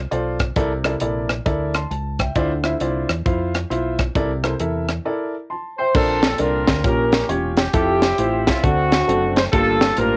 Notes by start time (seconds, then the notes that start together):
0.11 B1 F4 A4 C5 D5, closed hi-hat
0.40 kick, cross-stick, closed hi-hat
0.56 C2 C3 E4 A4 A#4 D5, kick, closed hi-hat
0.85 E4 A4 A#4 D5, cross-stick, closed hi-hat
1.00 A#1 E4 A4 A#4 D5, closed hi-hat
1.30 cross-stick, closed hi-hat
1.46 D2 E4 A4 A#4 D5, kick, closed hi-hat
1.74 A5 C6, cross-stick, closed hi-hat
1.91 C#2 A5, closed hi-hat
2.19 E5 G5, kick, cross-stick, closed hi-hat
2.35 D2 D3 E4 F4 C5 D5, kick, closed hi-hat
2.64 E4 F4 C5 E5, cross-stick, closed hi-hat
2.80 C2 E4 F4 C5 D5, closed hi-hat
3.09 E2, cross-stick, closed hi-hat
3.25 F2 E4 F4 C5 F5, kick, closed hi-hat
3.54 cross-stick, closed hi-hat
3.70 B1 E4 F4 C5 E5, closed hi-hat
3.99 kick, cross-stick, closed hi-hat
4.15 C2 C3 E4 A4 A#4 D5, kick, closed hi-hat
4.44 E4 A4 A#4 C5, cross-stick, closed hi-hat
4.60 E2 E4 A4 A#4 E5, closed hi-hat
4.89 cross-stick, closed hi-hat
5.05 E4 A4 A#4 D5
5.50 A5 C6
5.78 C5 E5 G5
5.95 A#1 A#2 C4 D4 A4 A#4 C5, kick, crash
6.23 snare, closed hi-hat
6.38 C2 D4 F4 A4 A#4 D5, closed hi-hat
6.68 D2, kick, snare, closed hi-hat
6.84 A#1 A#2 C#4 F4 G4 A#4, kick, closed hi-hat
7.12 snare, closed hi-hat
7.29 E1 C#4 F4 G4 C#5, closed hi-hat
7.57 G4, snare, closed hi-hat
7.74 F1 C4 E4 F4 G4 A4, kick, closed hi-hat
8.02 snare, closed hi-hat
8.18 A1 E4 F4 G4 C5, closed hi-hat
8.47 C2 F4, kick, snare, closed hi-hat
8.63 D2 D3 A3 C4 D4 F#4 A4, kick, closed hi-hat
8.92 snare, closed hi-hat
9.08 F#1 C4 D4 F#4 A4, closed hi-hat
9.36 C5, snare, closed hi-hat
9.52 G1 G2 A#3 D4 F4 G4 A4, kick, closed hi-hat
9.81 snare, closed hi-hat
9.97 A1 A#3 D4 F4 G4 A#4 C5, closed hi-hat